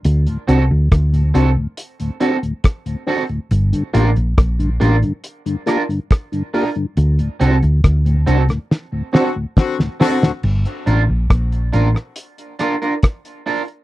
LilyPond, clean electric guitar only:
\new Staff \with { instrumentName = "Clean electric guitar" } { \time 4/4 \key g \minor \tempo 4 = 69 r8 <c' fis' a'>16 r8. <c' fis' a'>16 r8. <c' fis' a'>16 r8. <c' fis' a'>16 r16 | r8 <d' f' bes'>16 r8. <d' f' bes'>16 r8. <d' f' bes'>16 r8. <d' f' bes'>16 r16 | r8 <c' fis' a'>16 r8. <c' fis' a'>16 r8. <c' fis' a'>16 r8. <c' fis' a'>16 r16 | r8 <d' f' bes'>16 r8. <d' f' bes'>16 r8. <d' f' bes'>16 <d' f' bes'>16 r8 <d' f' bes'>16 r16 | }